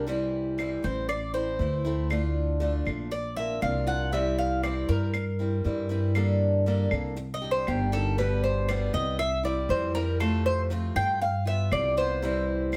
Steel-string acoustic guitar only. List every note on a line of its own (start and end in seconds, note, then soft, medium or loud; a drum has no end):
0.07 0.57 C3 medium
0.07 0.57 E3 medium
0.07 0.57 G3 medium
0.07 0.58 C4 medium
0.07 0.58 E4 medium
0.58 0.82 C3 medium
0.58 0.83 E3 medium
0.58 0.83 G3 medium
0.58 0.83 C4 medium
0.58 0.81 E4 medium
0.82 1.08 G3 soft
0.82 1.08 C4 soft
0.82 1.07 E4 soft
1.09 muted steel-string acoustic guitar stroke medium
1.34 1.59 A3 soft
1.34 1.59 C4 soft
1.34 1.58 E4 medium
1.59 1.84 E3 soft
1.59 1.84 A3 soft
1.59 1.85 C4 soft
1.59 1.83 E4 medium
1.85 2.10 A3 medium
1.85 2.10 C4 medium
1.85 2.09 E4 medium
2.10 2.59 D3 medium
2.10 2.60 A3 medium
2.10 2.61 D4 medium
2.10 2.61 F4 medium
2.60 2.85 D3 medium
2.60 2.86 A3 medium
2.60 2.86 D4 medium
2.60 2.84 F4 medium
2.85 3.11 A3 soft
2.85 3.11 D4 soft
2.85 3.10 F4 soft
3.11 muted steel-string acoustic guitar stroke medium
3.36 3.61 A#3 soft
3.36 3.62 D4 soft
3.36 3.61 F4 medium
3.61 3.86 F3 soft
3.61 3.87 A#3 soft
3.61 3.87 D4 soft
3.61 3.85 F4 medium
3.87 4.13 A#3 medium
3.87 4.12 D4 medium
3.87 4.12 F4 medium
4.12 4.62 C3 medium
4.12 4.62 E3 medium
4.12 4.63 G3 medium
4.12 4.63 C4 medium
4.12 4.63 E4 medium
4.63 4.88 C3 medium
4.63 4.88 E3 medium
4.63 4.88 G3 medium
4.63 4.89 C4 medium
4.63 4.88 E4 medium
4.89 5.13 G3 soft
4.89 5.13 C4 soft
4.89 5.13 E4 soft
5.14 muted steel-string acoustic guitar stroke medium
5.39 5.64 G3 soft
5.39 5.64 C4 medium
5.39 5.64 E4 medium
5.64 5.89 E3 medium
5.64 5.90 G3 medium
5.64 5.89 C4 medium
5.64 5.88 E4 medium
5.89 6.15 E3 medium
5.89 6.14 G3 medium
5.89 6.15 C4 medium
5.89 6.14 E4 medium
6.15 6.65 D3 medium
6.15 6.65 G3 medium
6.15 6.66 A#3 medium
6.15 6.66 D4 medium
6.15 6.66 A4 medium
6.66 6.91 D3 medium
6.66 6.91 G3 medium
6.66 6.91 A#3 medium
6.66 6.91 D4 medium
6.66 6.90 A4 medium
6.91 7.17 A#3 soft
6.91 7.16 D4 soft
6.91 7.16 A4 soft
7.16 muted steel-string acoustic guitar stroke medium
7.42 7.67 G3 soft
7.42 7.67 D4 medium
7.42 7.66 G4 medium
7.67 7.92 D#3 medium
7.67 7.92 G3 soft
7.67 7.92 D4 medium
7.67 7.91 G4 medium
7.92 8.18 D#3 medium
7.92 8.18 G3 medium
7.92 8.17 D4 medium
7.92 8.17 G4 medium
8.18 8.67 B2 medium
8.18 8.68 D3 medium
8.18 8.68 G3 medium
8.18 8.69 B3 medium
8.18 8.69 G4 medium
8.69 8.93 B2 medium
8.69 8.93 D3 medium
8.69 8.94 G3 medium
8.69 8.93 B3 medium
8.69 8.92 G4 medium
8.93 9.18 G3 soft
8.93 9.19 B3 soft
8.93 9.18 G4 medium
9.19 muted steel-string acoustic guitar stroke medium
9.43 9.69 G3 soft
9.43 9.69 C4 soft
9.43 9.68 E4 medium
9.69 9.94 E3 medium
9.69 9.94 G3 medium
9.69 9.94 C4 medium
9.69 9.93 E4 medium
9.94 10.20 E3 medium
9.94 10.20 G3 medium
9.94 10.19 C4 medium
9.94 10.19 E4 medium
10.20 10.69 C3 medium
10.20 10.70 F3 medium
10.20 10.70 A3 medium
10.20 10.70 C4 medium
10.20 10.71 F4 medium
10.70 10.95 C3 medium
10.70 10.95 F3 medium
10.70 10.95 A3 medium
10.70 10.96 C4 medium
10.70 10.95 F4 medium
10.96 11.21 A3 soft
10.96 11.21 C4 soft
10.96 11.21 F4 medium
11.21 muted steel-string acoustic guitar stroke medium
11.45 11.71 B3 soft
11.45 11.70 F4 medium
11.71 11.96 G3 soft
11.71 11.97 B3 medium
11.71 11.96 F4 medium
11.97 12.23 B3 medium
11.97 12.21 F4 medium
12.22 12.71 C3 medium
12.22 12.72 E3 medium
12.22 12.73 G3 medium
12.22 12.73 C4 medium
12.22 12.73 E4 medium
12.72 12.77 C3 medium
12.72 12.77 E3 medium
12.72 12.77 G3 medium